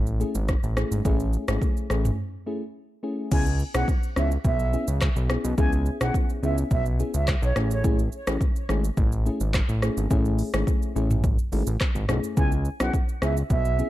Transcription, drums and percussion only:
0.07 shaker
0.20 shaker
0.35 shaker
0.48 kick, cross-stick, shaker
0.63 shaker
0.77 cross-stick, shaker
0.92 shaker
1.05 kick, shaker
1.20 shaker
1.33 shaker
1.48 cross-stick, shaker
1.62 kick, shaker
1.77 shaker
1.90 cross-stick, shaker
2.05 mid tom, shaker
3.31 kick, crash, shaker
3.46 shaker
3.59 shaker
3.74 cross-stick, shaker
3.88 kick, shaker
4.03 shaker
4.16 cross-stick, shaker
4.31 shaker
4.44 kick, shaker
4.59 shaker
4.73 shaker
4.88 shaker
5.01 kick, cross-stick, clap, shaker
5.16 shaker
5.30 cross-stick, shaker
5.45 shaker
5.58 kick, shaker
5.73 shaker
5.86 shaker
6.01 cross-stick, shaker
6.14 kick, shaker
6.30 shaker
6.43 shaker
6.58 shaker
6.71 kick, shaker
6.86 shaker
7.00 shaker
7.14 shaker
7.28 kick, cross-stick, clap, shaker
7.43 shaker
7.56 cross-stick, shaker
7.71 shaker
7.84 kick, shaker
7.99 shaker
8.12 shaker
8.27 cross-stick, shaker
8.41 kick, shaker
8.56 shaker
8.69 cross-stick, shaker
8.84 shaker
8.97 kick, shaker
9.12 shaker
9.26 shaker
9.40 shaker
9.54 kick, cross-stick, clap, shaker
9.69 shaker
9.82 cross-stick, shaker
9.97 shaker
10.11 kick, shaker
10.25 shaker
10.39 open hi-hat, shaker
10.54 cross-stick, shaker
10.67 kick, shaker
10.82 shaker
10.96 shaker
11.11 mid tom, shaker
11.24 kick, shaker
11.39 shaker
11.52 open hi-hat, shaker
11.67 shaker
11.80 kick, cross-stick, clap, shaker
11.95 mid tom, shaker
12.09 cross-stick, shaker
12.24 shaker
12.37 kick, shaker
12.52 shaker
12.65 shaker
12.80 cross-stick, shaker
12.94 kick, shaker
13.09 shaker
13.22 cross-stick, shaker
13.37 shaker
13.50 kick, shaker
13.65 shaker
13.79 shaker

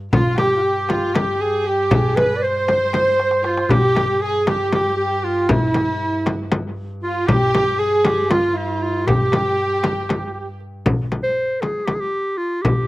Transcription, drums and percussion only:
0.13 frame drum, darbuka dum
0.27 darbuka ka
0.38 darbuka tek, frame drum
0.89 darbuka tek, frame drum
1.15 darbuka tek, frame drum
1.91 frame drum, darbuka dum
2.17 frame drum
2.43 darbuka ka
2.68 darbuka tek, frame drum
2.93 darbuka tek, frame drum
3.19 darbuka tek
3.31 darbuka ka
3.44 darbuka tek
3.57 darbuka ka
3.69 darbuka dum, frame drum
3.83 darbuka ka
3.95 darbuka tek, frame drum
4.47 darbuka tek, frame drum
4.73 darbuka tek, frame drum
5.49 frame drum, darbuka dum
5.64 darbuka ka
5.74 darbuka tek, frame drum
6.26 darbuka tek, frame drum
6.52 darbuka tek, frame drum
7.28 frame drum, darbuka dum
7.41 darbuka ka
7.55 darbuka tek, frame drum
8.05 darbuka tek, frame drum
8.31 darbuka tek, frame drum
9.07 darbuka dum, frame drum
9.19 darbuka ka
9.32 darbuka tek, frame drum
9.84 darbuka tek, frame drum
10.09 darbuka tek, frame drum
10.60 darbuka ka
10.86 darbuka dum, frame drum
10.99 darbuka ka
11.12 darbuka tek, frame drum
11.62 darbuka tek, frame drum
11.88 darbuka tek, frame drum
12.65 darbuka dum, frame drum

